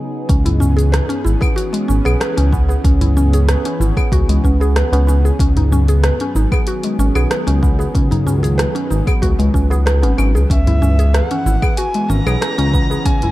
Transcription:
Already playing: C#3 F#3 B3 D#4 G#4
0.29 C#2 E3 C#4, kick, closed hi-hat, cabasa
0.45 E4, closed hi-hat, tabla ge
0.52 C#4
0.60 C#4, tabla ge, cabasa
0.77 G#4, closed hi-hat, cabasa
0.92 B4, cross-stick, closed hi-hat, cabasa
1.09 C#4, closed hi-hat
1.24 G#1 E4, cabasa
1.41 G#4, kick, tabla na, cabasa, claves
1.56 F#4, closed hi-hat, cabasa
1.73 G#3, closed hi-hat
1.88 G#1 C#4, cabasa
2.05 B1 G#4, tabla na, cabasa, claves
2.20 B4, cross-stick, closed hi-hat, cabasa
2.37 C#2 C#4, closed hi-hat
2.52 C#4, kick, tabla na, tabla tin, cabasa
2.69 G#4, tabla na, tabla tin, cabasa
2.84 C#2 C#4, kick, closed hi-hat, cabasa
3.01 E4, closed hi-hat, tabla ge
3.16 C#4, tabla ge, cabasa
3.33 G#4, closed hi-hat, cabasa
3.49 B4, cross-stick, closed hi-hat, cabasa
3.65 C#4, closed hi-hat
3.80 G#1 E4, cabasa
3.97 G#4, kick, tabla na, cabasa, claves
4.12 C#2 F#4, kick, closed hi-hat, cabasa
4.29 C#2 G#3, closed hi-hat
4.44 C#2 C#4, kick, tabla tin, cabasa
4.60 G#4, tabla na, cabasa
4.76 B4, cross-stick, closed hi-hat, cabasa
4.92 C#2 C#4, closed hi-hat, tabla na
5.07 C#4, tabla na, tabla tin, cabasa
5.25 G#4, cabasa
5.39 C#2 F#3 C#4, kick, closed hi-hat, cabasa
5.57 D#4, closed hi-hat, tabla ge
5.72 C#4, tabla ge, cabasa
5.78 D#3
5.88 G#4, closed hi-hat, cabasa
6.04 B4, cross-stick, closed hi-hat, cabasa
6.20 C#4, closed hi-hat
6.35 G#1 D#4, cabasa
6.52 G#4, kick, tabla na, cabasa, claves
6.67 F#4, closed hi-hat, cabasa
6.83 G#3, closed hi-hat
6.99 G#1 C#4, cabasa
7.15 B1 G#4, tabla na, cabasa, claves
7.31 B4, cross-stick, closed hi-hat, cabasa
7.47 C#2 C#4, closed hi-hat
7.63 C#4, kick, tabla na, tabla tin, cabasa
7.79 G#4, tabla na, tabla tin, cabasa
7.95 C#2 C#4, kick, closed hi-hat, cabasa
8.11 D#4, closed hi-hat, tabla ge
8.26 C#4, tabla ge, cabasa
8.43 G#4, closed hi-hat, tabla tin, cabasa
8.58 B4, cross-stick, closed hi-hat, cabasa
8.75 C#4, closed hi-hat
8.90 G#1 D#4, cabasa
9.07 G#4, kick, closed hi-hat, tabla na, cabasa, claves
9.22 C#2 F#4, kick, closed hi-hat, cabasa
9.39 C#2 G#3, closed hi-hat
9.54 C#2 C#4, kick, tabla tin, cabasa
9.70 G#4, tabla na, cabasa
9.86 B4, cross-stick, closed hi-hat, cabasa
10.02 G#1 C#4, closed hi-hat, tabla na
10.18 G#1 C#4, tabla na, tabla tin, cabasa, claves
10.35 C#2 G#4, cabasa
10.50 C#2 E3 C#4 E5, kick, closed hi-hat, cabasa
10.66 E4, closed hi-hat, tabla ge
10.81 C#4, tabla ge, cabasa
10.99 G#4, closed hi-hat, cabasa
11.13 B4 F#5, cross-stick, closed hi-hat, cabasa
11.31 C#4, closed hi-hat
11.46 G#1 E4, cabasa
11.62 G#4, kick, tabla na, cabasa, claves
11.77 F#4 G#5, closed hi-hat, cabasa
11.92 G#3 C#4, closed hi-hat
12.09 G#1 C#4 A#5, cabasa
12.26 B1 G#4, tabla na, cabasa, claves
12.41 B4, cross-stick, closed hi-hat, cabasa
12.58 C#2 C#4, closed hi-hat
12.73 C#4, kick, tabla na, tabla tin, cabasa
12.90 G#4, tabla na, tabla tin, cabasa
13.05 C#2 C#4 G#5, kick, closed hi-hat, cabasa
13.22 E4, closed hi-hat, tabla ge

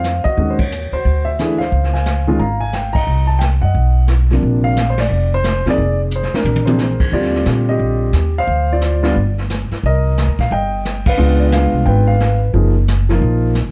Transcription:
Already playing: F2 C5 F5
0.04 snare, hi-hat pedal
0.24 F#4 D#5, muted upright bass stroke, kick
0.37 D#2 D#3 G#3 C#4 F#4, brush sweep, kick
0.50 C5
0.59 C#5, kick, ride
0.72 hi-hat pedal
0.92 D#2 F#4 C5
1.05 D2, brush sweep, kick
1.25 E5
1.39 E3 A3 D4 G#4, snare, hi-hat pedal
1.58 C5 F5, snare
1.72 C#2, brush sweep, kick
1.84 snare
1.93 F5 G#5, snare
2.06 snare, hi-hat pedal
2.27 D#3 G#3 C#4 F4
2.39 G#1 F5 A#5, brush sweep, kick
2.60 G#5
2.73 G5, snare, hi-hat pedal
2.93 D#5 A#5, kick, ride
3.07 C2, brush sweep
3.27 A5
3.39 G5, snare, hi-hat pedal
3.62 F#2 D#5 F#5
3.74 B1, brush sweep, kick
4.08 snare, hi-hat pedal
4.30 C3 F3 A#3 D4, snare
4.43 A#1, brush sweep, kick
4.64 F5
4.77 snare, hi-hat pedal
4.90 C5
4.98 D5, snare, ride
5.10 F1, brush sweep
5.34 C5
5.44 snare, hi-hat pedal
5.65 D#2 C3 F3 A#3 D#4 G#4, snare
5.70 D5
5.78 F1, brush sweep, kick
6.11 hi-hat pedal
6.16 C5
6.23 snare
6.33 D4 A#4, muted upright bass stroke, snare
6.44 A#1, high tom
6.56 high tom
6.65 C3 F3 A#3 D4 G#4 C5, high tom
6.79 snare, hi-hat pedal
7.00 D2, kick, crash
7.12 D#2 D3 G3 C4 F4 G4 D5, brush sweep, kick
7.23 snare
7.35 snare
7.45 A#2, snare, hi-hat pedal
7.69 G4 D#5
7.79 A#1, brush sweep, kick
8.13 D#2, snare, hi-hat pedal
8.38 C5 F5
8.47 D2, brush sweep, kick
8.73 F4 D5
8.81 snare, hi-hat pedal
9.03 G3 B3 D4 F4, snare
9.16 G1, brush sweep, kick
9.38 snare
9.50 snare, hi-hat pedal
9.71 muted upright bass stroke, snare
9.83 C2 A#4 D#5, brush sweep, kick
10.18 snare, hi-hat pedal
10.27 D2
10.39 A#1 F5, kick, snare
10.51 G1 D#5 G5, brush sweep, kick
10.85 snare, hi-hat pedal
11.06 B4 F5, kick, ride
11.18 C#2 G#3 B3 D4 F4, brush sweep
11.40 D5
11.52 F5, snare, hi-hat pedal
11.72 C2
11.86 G#1 B4 G5, brush sweep, kick
12.07 F5
12.20 snare, hi-hat pedal
12.54 F#1 F3 A#3 D#4 G#4, brush sweep, kick
12.88 snare, hi-hat pedal
13.09 F3 A#3 D#4 F4, snare
13.21 A#1, brush sweep, kick
13.55 snare, hi-hat pedal
13.66 C#2

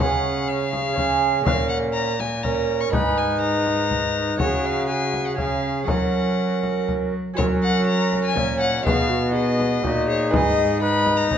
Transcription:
Already playing: G#3 C#4 C#5
0.00 C#3 C#4 G#4 F#5, frame drum
0.48 F5
0.73 frame drum
0.93 G#3 C#4 C#5
0.97 C#4 G#4, frame drum
1.43 A#3 C#4 C#5 F5, frame drum
1.47 A#2 B4
1.52 A#4
1.69 F#5
1.93 A#5
2.20 G#5, frame drum
2.43 C#4 A#4 A#5, frame drum
2.81 C#6
2.89 G#2 B3 D#4 G#4 B5, frame drum
2.93 D#4 B4
3.18 G#5
3.41 A#5
3.67 frame drum
3.91 frame drum
4.37 C#3 C#4 F#4 G#4 C#5, frame drum
4.41 C#3 A#4
4.46 G#4
4.65 F5
4.88 F#4 G#4 G#5
5.14 frame drum
5.26 F#5
5.34 C#3 C#4 G#4 F5
5.38 C#3 G#4, frame drum
5.84 F#3 C#4 F#4 A#4 F#5, frame drum
5.89 A#4
6.63 frame drum
6.88 frame drum
7.34 C#4 F#4 A#4 C#5
7.38 F#3 A#4, frame drum
7.63 F#5
7.87 A#5
8.13 frame drum
8.25 G#5
8.36 A#2 C#4 D5, frame drum
8.40 C#5
8.60 F#5
8.82 B2 B3 D#4 F#4 B4 F5
8.86 B2 G#4, frame drum
9.10 F#4
9.30 D#4 F#4 G#4 B4 D#5
9.60 frame drum
9.84 A#2 D#4 F#4, frame drum
10.08 G#4 C#5
10.28 G#2 D#4 G#4 B4
10.32 G#2 D#5, frame drum
10.81 D#4 B4 B5
11.06 frame drum
11.17 A#5
11.30 B2 C#5, frame drum

